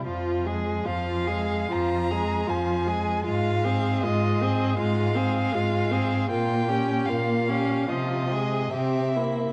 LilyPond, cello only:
\new Staff \with { instrumentName = "Cello" } { \clef bass \time 4/4 \key f \minor \tempo 4 = 77 f,4 f,4 f,4 f,4 | aes,4 aes,4 aes,4 aes,4 | bes,4 bes,4 c4 c4 | }